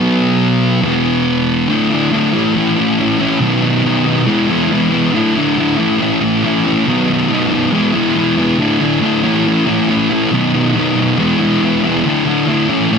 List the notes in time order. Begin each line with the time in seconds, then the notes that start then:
Already playing: B2 F#3
0.00 B3
0.82 E2 B2 E3
1.68 D3 A3 D4 E4
1.90 A3 D4 E4
2.11 D3 A3 D4 E4
2.32 A2 E3 A3 C#4 E4
2.54 E3 A3 C#4 E4
2.76 A2 E3 A3 C#4 E4
2.98 E3 A3 C#4 E4
3.19 A3 C#4 E4
3.40 B2 D#3 F#3 B3 D#4
3.62 F#3 B3 D#4
3.84 B2 D#3 F#3 B3 D#4
4.04 F#3 B3 D#4
4.25 E3 G#3 B3 E4
4.47 E3 G#3 B3 E4
4.69 E3 G#3 B3 E4
4.89 G#3 B3 E4
5.12 D3 A3 D4 E4
5.35 A3 D4 E4
5.56 D3 A3 D4 E4
5.76 A2 E3 A3 C#4 E4
5.99 E3 A3 C#4 E4
6.20 A2 E3 A3 C#4 E4
6.43 E3 A3 C#4 E4
6.63 A3 C#4 E4
6.86 B2 D#3 F#3 B3 D#4
7.08 F#3 B3 D#4
7.29 B2 D#3 F#3 B3 D#4
7.51 F#3 B3 D#4
7.71 E3 G#3 B3 E4
7.92 E3 G#3 B3 E4
8.15 E3 G#3 B3
8.19 E4
8.37 G#3 B3 E4
8.57 D3 A3 D4 E4
8.79 A3 D4 E4
9.00 D3 A3 D4 E4
9.23 A2 E3 A3 C#4 E4
9.44 E3 A3 C#4 E4
9.66 A2 E3 A3 C#4 E4
9.87 E3 A3 C#4 E4
10.09 A3 C#4 E4
10.31 B2 D#3 F#3 B3 D#4
10.53 F#3 B3 D#4
10.75 B2 D#3 F#3 B3 D#4
10.96 F#3 B3 D#4
11.18 E3 G#3 B3 E4
11.39 E3 G#3 B3 E4
11.62 E3 G#3 B3 E4
11.83 B3 E4
11.87 G#3
12.05 D3 A3 D4 E4
12.25 A3 D4 E4
12.47 D3 A3 D4 E4
12.68 A2 E3 A3 C#4 E4
12.91 E3 A3 C#4 E4